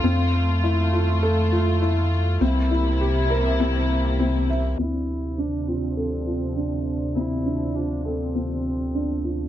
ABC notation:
X:1
M:4/4
L:1/8
Q:1/4=101
K:Dm
V:1 name="Felt piano"
C z E F A F E z | C E G B C z C e | C z D F A F D z | C D F A C z D F |]
V:2 name="Viola"
z8 | z8 | E2 D C C3 z | E2 D C C3 z |]
V:3 name="String section"
[A,F]8 | [C,B,E]8 | [C,F,D]8- | [C,F,D]8 |]
V:4 name="Analog synth bass" clef=bass
F,,8 | C,,8 | D,,8- | D,,8 |]